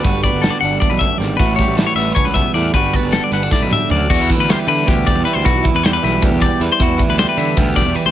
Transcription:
<<
  \new Staff \with { instrumentName = "Clean electric guitar" } { \time 7/8 \key e \minor \tempo 4 = 155 b'8 d''8 a'16 d''16 fis''8 d''16 b'16 e''8 d''8 | b'8 cis''8 a'16 cis''16 e''8 cis''16 b'16 e''8 d''8 | b'8 d''8 a'16 d''16 fis''8 d''16 b'16 e''8 d''8 | fis'8 r16 b'16 c''16 b'16 b'8 g'8 d''8 b'16 c''16 |
fis'8 r16 b'16 c''16 b'16 b'8 g'8 d''8 b'16 c''16 | fis'8 r16 b'16 c''16 b'16 b'8 g'8 d''8 b'16 c''16 | }
  \new Staff \with { instrumentName = "Clean electric guitar" } { \clef bass \time 7/8 \key e \minor << { fis'8 b4 d'2 | fis'8 g4 b2 | fis'8 b4 b16 d'4.~ d'16 | d'16 e'8. g4. g4 |
e'4 g4. g4 | e'4 g4. g4 | } \\ { <g, d>4 d4 e,8 fis,8 g,8 | a,4 e4 cis8 b,8 a,8 | g,4 d4 a,8 g,8 fis,8 | e,8 e4 e8 b,4 e8 |
e,8 e4 e8 b,4 e8 | e,8 e4 e8 b,4 e8 | } >> }
  \new Staff \with { instrumentName = "Picked electric bass" } { \clef bass \time 7/8 \key e \minor g,,8. g,,8 r16 g,,8 r16 b,,8 r16 aes,,8 | a,,8. a,,8 r16 a,,8 r16 cis,8 r16 e,8 | g,,8. g,,8 r16 g,,8 r16 b,,8 r16 d,8 | e,8. d,8 r16 d8 d,8. e,16 r16 d,16 |
b,,8. e,8. b,,8 d,16 e,8 r16 e,16 r16 | e,8. d,8 r16 d8 d,8. e,16 r16 d,16 | }
  \new DrumStaff \with { instrumentName = "Drums" } \drummode { \time 7/8 <hh bd>8 <hh bd>8 <hh sn>8 hh8 <hh bd>8 <hh bd>8 <hh sn>8 | <hh bd>8 <hh bd>8 <hh sn>8 <hh sn>8 <hh bd>8 <hh bd>8 hh8 | <hh bd>8 <hh bd>8 <hh sn>8 <hh sn>8 <bd sn>8 toml8 tomfh8 | <cymc bd>8 <hh bd>8 <hh sn>8 hh8 <hh bd sn>8 <hh bd>8 hh8 |
<hh bd>8 <hh bd>8 <hh sn>8 <hh sn>8 <hh bd>8 <hh bd>8 hh8 | <hh bd>8 <hh bd>8 <hh sn>8 <hh sn>8 <hh bd sn>8 <hh bd sn>8 hh8 | }
>>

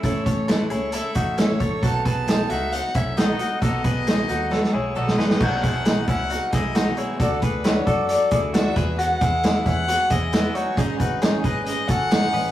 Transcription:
<<
  \new Staff \with { instrumentName = "Violin" } { \time 4/4 \key b \mixolydian \tempo 4 = 134 cis''4 b'8 cis''8 e''4 cis''4 | a''8 a''4 e''8 fis''8 e''8 dis''4 | dis''2 b'8 cis''8 dis''4 | fis''4. fis''4 dis''4 cis''8 |
d''8 b'8 cis''8 d''8 d''8 d''8 e''4 | fis''4. fis''4 dis''4 cis''8 | dis''8 b'8 cis''8 dis''8 dis''8 fis''4. | }
  \new Staff \with { instrumentName = "Clean electric guitar" } { \time 4/4 \key b \mixolydian <e' a'>8 <a' cis''>8 <e' a'>8 <e' gis'>8 <e' a'>8 <dis' fis'>8 <cis' e'>8 <a' cis''>8 | <fis' a'>8 <gis' b'>8 <dis' gis'>8 <dis' fis'>4 <cis' e'>8 <b dis'>8 <dis' fis'>8 | <fis' a'>8 <gis' b'>8 <dis' gis'>8 <dis' fis'>8 <fis' a'>8 <e' gis'>8 <fis' a'>8 <gis' b'>8 | <dis' fis'>8 <e' gis'>8 <dis' gis'>8 <cis' e'>8 <dis' fis'>8 <e' gis'>8 <dis' fis'>8 <e' gis'>8 |
<fis' a'>8 <gis' b'>8 <fis' b'>8 <fis' a'>4 <e' gis'>8 <d' fis'>8 <gis' b'>8 | <b fis'>8 <e' gis'>8 <e' gis'>8 <cis' e'>8 <b fis'>8 <e' gis'>8 <b e'>8 <dis' fis'>8 | <dis' gis'>8 <dis' fis'>8 <dis' gis'>8 <gis' b'>4 <fis' a'>8 <dis' gis'>8 <b' dis''>8 | }
  \new Staff \with { instrumentName = "Twelve-string acoustic guitar" } { \time 4/4 \key b \mixolydian <a, e a cis' e' a'>4 <a, e a cis' e' a'>8 <a cis' e' a'>8 <a cis' e' a'>4 <a, e a cis' e' a'>8 <a cis' e' a'>8 | <b, dis fis b dis' a'>4 <b, dis fis b dis' a'>8 <fis b dis' a'>8 <fis b dis' a'>4 <b, dis fis b dis' a'>8 <fis b dis' a'>8 | <b, dis fis b dis' a'>4 <b, dis fis b dis' a'>8 <fis b dis' a'>8 <fis b dis' a'>4 <b, dis fis b dis' a'>8 <fis b dis' a'>8 | <b, dis fis b dis' gis'>8 <fis b dis' gis'>8 <b, dis fis b dis' gis'>8 <fis b dis' gis'>8 <fis b dis' gis'>8 <fis b dis' gis'>8 <b, dis fis b dis' gis'>4 |
<d fis d' fis' a'>8 <d' fis' a'>8 <d fis d' fis' a'>8 <d' fis' a'>8 <fis d' fis' a'>8 <d' fis' a'>8 <d fis d' fis' a'>8 <e fis b e' gis'>8~ | <e fis b e' gis'>8 <b e' gis'>8 <e fis b e' gis'>8 <b e' gis'>8 <fis b e' gis'>8 <b e' gis'>8 <e fis b e' gis'>4 | <gis, cis gis cis' dis' gis'>8 <gis cis' dis' gis'>8 <gis, cis gis cis' dis' gis'>8 <gis cis' dis' gis'>8 <gis cis' dis' gis'>8 <gis cis' dis' gis'>8 <gis, cis gis cis' dis' gis'>4 | }
  \new Staff \with { instrumentName = "Picked electric bass" } { \clef bass \time 4/4 \key b \mixolydian a,,8 a,,4 cis,8. r16 a,,4 a,,8 | b,,8 b,,4 cis,8. r16 b,,4 r8 | b,,8 b,,4 dis,8. r16 b,,8 b,,8 gis,,8 | b,,8 b,,4 cis,8. r16 b,,4 r8 |
d,8 d,4 fis,8. r16 d,4 e,8~ | e,8 e,4 e,8. r16 e,4 r8 | gis,,8 gis,,4 gis,,8. r16 gis,,4 a,,8 | }
  \new DrumStaff \with { instrumentName = "Drums" } \drummode { \time 4/4 <hh bd>8 <hh bd>8 <hh sn>8 hh8 hh8 <hh bd>8 <hh sn>8 <hh bd>8 | <hh bd>8 <hh bd>8 <hh sn>8 hh8 hh8 <hh bd>8 <hh sn>8 hh8 | <hh bd>8 <hh bd>8 <hh sn>8 hh8 sn16 sn8. r16 sn16 sn16 sn16 | <cymc bd>8 <hh bd>8 <hh sn>8 <hh bd>8 hh8 <hh bd sn>8 <hh sn>8 hh8 |
<hh bd>8 <hh bd>8 <hh sn>8 <hh bd>8 hh8 <hh bd>8 <hh sn>8 <hh bd>8 | hh8 <hh bd>8 <hh sn>8 <hh bd>8 hh8 <hh bd>8 <hh sn>8 hh8 | <hh bd>8 <hh bd>8 <hh sn>8 <hh bd>8 hh8 <hh bd>8 <hh sn>8 hho8 | }
>>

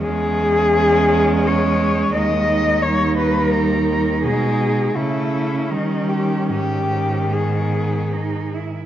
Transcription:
<<
  \new Staff \with { instrumentName = "Cello" } { \time 3/4 \key gis \minor \tempo 4 = 83 gis'2 cis''4 | dis''4 cis''8 b'8 ais'4 | gis'4 e'4 dis'8 g'8 | g'4 gis'4. r8 | }
  \new Staff \with { instrumentName = "Cello" } { \time 3/4 \key gis \minor cis'2. | dis'2.~ | dis'4 cis'2~ | cis'4 b4 dis'8 e'8 | }
  \new Staff \with { instrumentName = "Cello" } { \clef bass \time 3/4 \key gis \minor gis2.~ | gis4 g2 | gis4 a4 g4 | dis2~ dis8 r8 | }
  \new Staff \with { instrumentName = "Cello" } { \clef bass \time 3/4 \key gis \minor e,2. | dis,2. | b,4 cis4 dis4 | gis,2~ gis,8 r8 | }
>>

